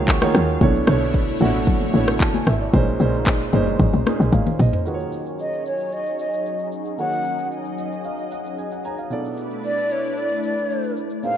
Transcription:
Already playing: C#2 C#3 D#3 F#3 G#3 A#3 F4 F#4 G#4 C#5 F5 F#5
0.08 C#6, kick, clap, shaker
0.22 D#3 A#3 F4 F#4 G#4 C#5, cross-stick, high conga, shaker
0.35 D#2, cross-stick, shaker
0.48 shaker
0.61 B1 B2 D3 A3 D4 E4 C#5, kick, low conga, shaker
0.75 shaker
0.87 B1 B2 A3 D4 E4 C#5, cross-stick, high conga, shaker
1.01 shaker
1.14 kick, shaker
1.28 shaker
1.41 A1 B2 A3 D4 E4 F#4, high conga, shaker
1.55 high conga, shaker
1.67 kick, low conga, shaker
1.81 high conga, shaker
1.94 A1 B2 A3 D4 E4 C#5, high conga, shaker
2.08 cross-stick, shaker
2.20 A5, kick, clap, shaker
2.34 G#5, high conga, shaker
2.47 G#1 E5, cross-stick, shaker
2.60 D5, shaker
2.73 A#1 A#2 C#3 G#3 C#4 D#4 C5, kick, low conga, shaker
2.88 shaker
3.00 A#1 A#2 G#3 C#4 D#4 C5, high conga, shaker
3.14 shaker
3.27 kick, clap, shaker
3.40 shaker
3.53 F#1 A#2 G#3 C#4 D#4 C5, high conga, low conga, shaker
3.67 high conga, shaker
3.79 G#1, kick, low conga, shaker
3.93 A#1, high conga, shaker
4.06 A#2 G#3 C#4 D#4 G#4, cross-stick, high conga, shaker
4.20 A#1, shaker
4.33 G#1 F5, kick, high tom, shaker
4.47 mid tom, high conga, shaker
4.59 A#1 D#5, mid tom, open hi-hat, shaker
4.73 C5, floor tom, shaker
4.85 D#3 F#3 A#3 C#4 D#4 F4 F#4 G#4 B4 C#5, shaker
4.94 C#5
5.00 shaker
5.12 shaker
5.26 shaker
5.39 D#5, shaker
5.53 shaker
5.66 C#5, shaker
5.80 shaker
5.92 D#5, shaker
6.06 shaker
6.19 D#5, shaker
6.33 shaker
6.46 shaker
6.59 shaker
6.72 shaker
6.85 shaker
6.98 D#3 A#3 D#4 F#4 G#4 C#5 D#5 F#5, shaker
7.12 shaker
7.25 shaker
7.39 shaker
7.51 shaker
7.65 shaker
7.78 D#5, shaker
7.92 shaker
8.04 F5, shaker
8.18 shaker
8.31 F#5, shaker
8.46 shaker
8.58 G#5, shaker
8.71 F#5, shaker
8.84 G#5 A#5, shaker
8.98 F5, shaker
9.10 B2 A3 B3 D4 E4 A4 B4 D5, shaker
9.25 shaker
9.37 shaker
9.51 shaker
9.64 D5, shaker
9.77 shaker
9.90 C#5, shaker
10.04 shaker
10.17 D5, shaker
10.31 shaker
10.44 D5, shaker
10.58 shaker
10.70 shaker
10.83 shaker
10.97 shaker
11.10 shaker
11.23 A#2 G#3 A#3 C#4 D#4 G#4 A#4 C5 F5, shaker

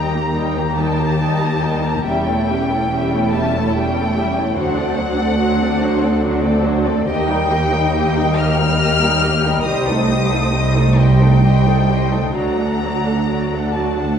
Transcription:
Already playing: D#2 G3 D#4 A#4 G5 A#5
0.11 A#3 G4
0.15 G4 A#5
0.33 G3 D#4 A#4 G5
0.56 A#3 G4 A#5
0.77 G3 D#4 A#4 G5 A5
0.99 A#3 G4 A#5
1.19 G3 D#4 A#4 G5
1.39 A#3 G4 A#5
1.62 G3 D#4 A#4 G5
1.83 A#3 G4 A#5
2.04 E1 E2 G3 C#4 G4 E5 G5
2.26 A3 E4 A4 C#5
2.47 G3 C#4 G4 E5
2.69 A3 E4 A4 C#5
2.91 G3 C#4 G4 E5
3.11 A3 E4 A4 C#5
3.33 G3 C#4 G4 E5 A5
3.55 A3 E4 A4 C#5
3.75 G3 C#4 G4 E5 G5
3.95 A3 A4 C#5
3.99 E4
4.15 G3 C#4 G4 E5
4.36 A3 E4 A4 C#5
4.54 D2 F#4 C5 F#5
4.59 D2 F#3 D4
4.77 A3 C4 A4 D5
4.96 F#3 D4 F#4 C5
5.18 A3 C4 A4 D5
5.39 F#3 D4 F#4 C5
5.61 A3 C4 A4 D5
5.81 F#3 D4 F#4 C5
6.02 A3 C4 A4 D5
6.22 F#3 D4 F#4 C5
6.43 A3 C4 A4 D5
6.63 F#3 D4 F#4 C5
6.85 A3 C4 A4 D5
7.06 D#2 A#3 G4 D#5 G5
7.27 G3 D#4 A#4 G5
7.50 A#3 G4 D#5
7.72 G3 D#4 A#4 G5
7.94 A#3 G4 D#5
8.14 G3 D#4 A#4 G5
8.36 A#3 G4 D#5 F6
8.56 G3 A#4 G5
8.61 D#4
8.77 A#3 G4 D#5
9.01 G3 D#4 A#4 G5
9.20 A#3 G4 D#5
9.43 G3 D#4 A#4 G5
9.64 C2 G3 G4 C5 D#5 D#6
9.87 A3 D#4 A4 C5
10.07 G3 G4 C5 D#5
10.30 A3 D#4 A4 C5
10.53 G3 G4 C5 D#5
10.74 A3 D#4 A4 C5
10.98 G3 G4 C5 D#5 G5
11.20 A3 D#4 A4 C5
11.43 G3 G4 C5 D#5
11.65 A3 D#4 A4 C5
11.87 G3 G4
11.92 C5 D#5
12.10 A3 D#4 A4 C5
12.33 D2 F#3 F#4 D5 A#5
12.58 A3 D4 A4 F#5
12.82 F#3 F#4 D5
13.05 A3 D4 A4 F#5
13.28 F#3 F#4 D5
13.53 A3 D4 A4 F#5
13.72 F#3 F#4 D5 A5
13.97 A3 D4 A4 F#5

